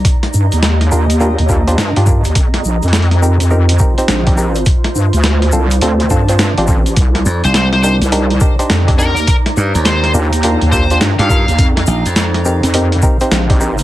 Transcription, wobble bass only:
X:1
M:4/4
L:1/16
Q:"Swing 16ths" 1/4=104
K:Eblyd
V:1 name="Wobble bass" clef=bass
z2 G,, E,,3 E,,3 E,,3 G,, G,,2 E,, | F,,2 B,,, F,,4 F,,3 z2 B,,,4 | z2 G,, D,,3 C,,2 D,,2 G,,3 A,,,3 | C,,2 z4 z C,,3 z2 F,,4 |
z6 E,,3 E,,3 G,, z2 E,, | F,,2 z4 z F,,3 z2 B,,,4 |]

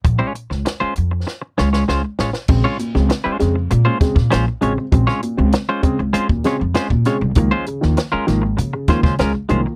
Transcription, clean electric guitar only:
X:1
M:4/4
L:1/16
Q:1/4=98
K:Bbm
V:1 name="Clean electric guitar"
z [A,DFd] z3 [A,DFc] z4 [A,DFd] [A,DFd] [A,DFc] z [A,DFd] z | z [A,DFd] z3 [A,DFc] z3 [A,DFc] z2 [A,DFc] z [A,DFd] z | z [A,DFd] z3 [A,DFc] z2 [A,DFc] z [A,DFd] z [A,DFc] z [A,DFd] z | z [A,DFc] z3 [A,DFB] z4 [A,DFc] [A,DFc] [A,DFB] z [A,DFc] z |]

